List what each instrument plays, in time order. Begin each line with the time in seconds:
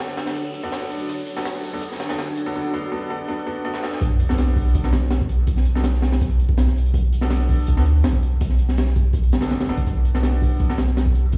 Already playing: grand piano B3 D4 F#4 A4, riser
0.08 snare
0.17 ambient pad D4 F#4 A4 C#5, snare, closed hi-hat
0.26 snare, closed hi-hat
0.36 kick, closed hi-hat
0.45 closed hi-hat
0.54 closed hi-hat
0.63 grand piano B3 D4 F#4 A4, kick
0.72 snare, closed hi-hat
0.81 snare
0.90 closed hi-hat
0.99 closed hi-hat
1.09 kick, closed hi-hat
1.26 closed hi-hat
1.36 grand piano B3 D4 F#4 A4, snare
1.45 snare, closed hi-hat
1.55 snare
1.63 ambient pad D4 F#4 A4 C#5, kick, open hi-hat
1.73 grand piano B3 D4 F#4 A4
1.82 kick, closed hi-hat
1.92 snare
2.00 snare, closed hi-hat
2.09 grand piano B3 D4 F#4 A4, snare, closed hi-hat
2.18 snare, closed hi-hat
2.27 kick
2.37 closed hi-hat
2.46 grand piano B3 D4 F#4 A4
2.55 grand piano B3 D4 F#4 A4
2.73 grand piano B3 D4 F#4 A4
2.92 grand piano B3 D4 F#4 A4
3.10 grand piano B3 D4 F#4 A4
3.28 grand piano B3 D4 F#4 A4
3.46 grand piano B3 D4 F#4 A4
3.65 grand piano B3 D4 F#4 A4
3.74 snare
3.83 grand piano B3 D4 F#4 A4, snare
3.93 snare
4.01 sub bass B1, kick, closed hi-hat, sub drop
4.20 closed hi-hat
4.29 grand piano B3 D4 F#4 A4, snare
4.38 snare, closed hi-hat
4.47 snare
4.56 kick, open hi-hat
4.74 kick, closed hi-hat
4.84 grand piano B3 D4 F#4 A4, snare
4.93 snare, closed hi-hat
5.02 snare
5.10 snare, closed hi-hat
5.21 kick
5.29 closed hi-hat
5.47 sub bass B1, kick, closed hi-hat
5.57 snare
5.65 closed hi-hat
5.75 grand piano B3 D4 F#4 A4, snare
5.84 snare, closed hi-hat
5.94 snare
6.02 snare, closed hi-hat
6.12 snare, closed hi-hat
6.21 kick, closed hi-hat
6.30 closed hi-hat
6.39 closed hi-hat
6.49 kick
6.57 snare, closed hi-hat
6.67 snare
6.77 closed hi-hat
6.86 closed hi-hat
6.94 sub bass B1, kick, closed hi-hat
7.13 closed hi-hat
7.21 grand piano B3 D4 F#4 A4, snare
7.31 snare, closed hi-hat
7.40 snare
7.49 kick, open hi-hat
7.67 sub bass D2, kick, closed hi-hat
7.77 grand piano B3 D4 F#4 A4, snare
7.85 closed hi-hat
7.96 closed hi-hat
8.04 sub bass B1, snare, closed hi-hat
8.13 kick
8.23 closed hi-hat
8.41 sub bass B1, kick, closed hi-hat
8.49 snare
8.59 closed hi-hat
8.69 snare
8.77 snare, closed hi-hat
8.87 snare
8.95 kick, closed hi-hat
9.13 sub bass B1, kick, closed hi-hat
9.23 closed hi-hat
9.32 sub bass F#1, snare, closed hi-hat
9.41 grand piano B3 D4 F#4 A4, snare, closed hi-hat
9.50 snare, closed hi-hat
9.60 snare, closed hi-hat
9.68 sub bass F#1, grand piano B3 D4 F#4 A4, snare
9.77 kick, closed hi-hat
9.87 sub bass B1, kick, closed hi-hat
10.05 closed hi-hat
10.14 grand piano B3 D4 F#4 A4, snare
10.23 snare, closed hi-hat
10.33 snare
10.42 kick, open hi-hat
10.60 kick, closed hi-hat
10.70 grand piano B3 D4 F#4 A4, snare
10.78 snare, closed hi-hat
10.88 snare
10.97 snare, closed hi-hat
11.06 kick
11.15 closed hi-hat
11.32 sub bass B1, kick, closed hi-hat